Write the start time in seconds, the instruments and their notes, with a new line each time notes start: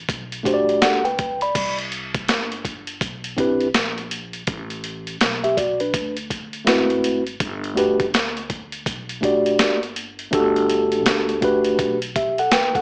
0.09 upright bass B1, kick, closed hi-hat
0.32 closed hi-hat
0.43 tine electric piano A3 D4 F#4 G4, kick, closed hi-hat
0.47 tine electric piano C5
0.54 tine electric piano D5
0.69 closed hi-hat
0.82 upright bass C#2, tine electric piano A4 F#5, snare, closed hi-hat
1.05 tine electric piano B4 G5, closed hi-hat
1.19 kick, closed hi-hat
1.41 tine electric piano D5 B5, closed hi-hat
1.55 upright bass C2, kick, closed hi-hat, crash
1.78 closed hi-hat
1.92 closed hi-hat
2.15 kick, closed hi-hat
2.28 upright bass G1, snare, closed hi-hat
2.52 closed hi-hat
2.65 kick, closed hi-hat
2.87 closed hi-hat
3.01 upright bass B1, kick, closed hi-hat
3.24 closed hi-hat
3.37 tine electric piano C4 D4 E4 G4 B4, kick, closed hi-hat
3.61 closed hi-hat
3.74 upright bass A#1, snare, closed hi-hat
3.98 closed hi-hat
4.11 closed hi-hat
4.33 closed hi-hat
4.47 upright bass A1, kick, closed hi-hat
4.70 closed hi-hat
4.84 closed hi-hat
5.07 closed hi-hat
5.21 upright bass B1, snare, closed hi-hat
5.44 tine electric piano G4 E5, closed hi-hat
5.57 tine electric piano F#4 D5, kick, closed hi-hat
5.80 tine electric piano D4 B4, closed hi-hat
5.94 upright bass D2, kick, closed hi-hat
6.17 closed hi-hat
6.30 kick, closed hi-hat
6.53 closed hi-hat
6.65 upright bass G#1, tine electric piano A3 C4 E4 F#4, snare, closed hi-hat
6.69 tine electric piano B4
6.90 closed hi-hat
7.04 closed hi-hat
7.27 closed hi-hat
7.40 upright bass G1, kick, closed hi-hat
7.64 closed hi-hat
7.75 tine electric piano A3 D4 F#4 G4 B4, closed hi-hat
8.00 kick, closed hi-hat
8.14 upright bass D2, snare, closed hi-hat
8.37 closed hi-hat
8.50 kick, closed hi-hat
8.72 closed hi-hat
8.86 upright bass B1, kick, closed hi-hat
9.09 closed hi-hat
9.21 tine electric piano A3 D4 F#4 G4, kick, closed hi-hat
9.25 tine electric piano D5
9.46 closed hi-hat
9.59 upright bass G1, snare, closed hi-hat
9.83 closed hi-hat
9.96 closed hi-hat
10.19 closed hi-hat
10.31 upright bass G1, tine electric piano A3 D4 F#4 G4 A4, kick, closed hi-hat
10.56 closed hi-hat
10.69 closed hi-hat
10.92 closed hi-hat
11.06 upright bass D2, snare, closed hi-hat
11.29 closed hi-hat
11.41 tine electric piano A3 D4 F#4 G4 B4, kick, closed hi-hat
11.64 closed hi-hat
11.79 upright bass B1, kick, closed hi-hat
12.02 closed hi-hat
12.16 tine electric piano G4 E5, kick, closed hi-hat
12.38 tine electric piano A4 F#5, closed hi-hat
12.52 upright bass G#1, tine electric piano B4 G5, snare, closed hi-hat
12.75 tine electric piano A4 F#5, kick, closed hi-hat